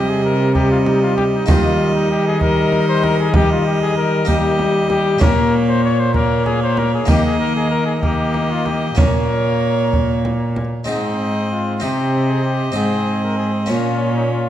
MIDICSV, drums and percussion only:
0, 0, Header, 1, 2, 480
1, 0, Start_track
1, 0, Tempo, 621762
1, 1148, Time_signature, 6, 3, 24, 8
1, 4988, Tempo, 628272
1, 11122, End_track
2, 0, Start_track
2, 0, Title_t, "Frame drum"
2, 426, Note_on_c, 9, 64, 57
2, 503, Note_off_c, 9, 64, 0
2, 667, Note_on_c, 9, 64, 54
2, 744, Note_off_c, 9, 64, 0
2, 910, Note_on_c, 9, 64, 53
2, 987, Note_off_c, 9, 64, 0
2, 1146, Note_on_c, 9, 64, 89
2, 1223, Note_off_c, 9, 64, 0
2, 1861, Note_on_c, 9, 64, 54
2, 1938, Note_off_c, 9, 64, 0
2, 2101, Note_on_c, 9, 64, 56
2, 2179, Note_off_c, 9, 64, 0
2, 2343, Note_on_c, 9, 64, 53
2, 2421, Note_off_c, 9, 64, 0
2, 2575, Note_on_c, 9, 64, 86
2, 2653, Note_off_c, 9, 64, 0
2, 3304, Note_on_c, 9, 64, 56
2, 3381, Note_off_c, 9, 64, 0
2, 3544, Note_on_c, 9, 64, 58
2, 3621, Note_off_c, 9, 64, 0
2, 3782, Note_on_c, 9, 64, 55
2, 3859, Note_off_c, 9, 64, 0
2, 4024, Note_on_c, 9, 64, 89
2, 4101, Note_off_c, 9, 64, 0
2, 4742, Note_on_c, 9, 64, 59
2, 4820, Note_off_c, 9, 64, 0
2, 4989, Note_on_c, 9, 64, 53
2, 5065, Note_off_c, 9, 64, 0
2, 5226, Note_on_c, 9, 64, 55
2, 5302, Note_off_c, 9, 64, 0
2, 5461, Note_on_c, 9, 64, 78
2, 5537, Note_off_c, 9, 64, 0
2, 6185, Note_on_c, 9, 64, 54
2, 6261, Note_off_c, 9, 64, 0
2, 6425, Note_on_c, 9, 64, 55
2, 6502, Note_off_c, 9, 64, 0
2, 6667, Note_on_c, 9, 64, 51
2, 6743, Note_off_c, 9, 64, 0
2, 6909, Note_on_c, 9, 64, 88
2, 6986, Note_off_c, 9, 64, 0
2, 7640, Note_on_c, 9, 64, 56
2, 7716, Note_off_c, 9, 64, 0
2, 7883, Note_on_c, 9, 64, 54
2, 7959, Note_off_c, 9, 64, 0
2, 8123, Note_on_c, 9, 64, 53
2, 8199, Note_off_c, 9, 64, 0
2, 11122, End_track
0, 0, End_of_file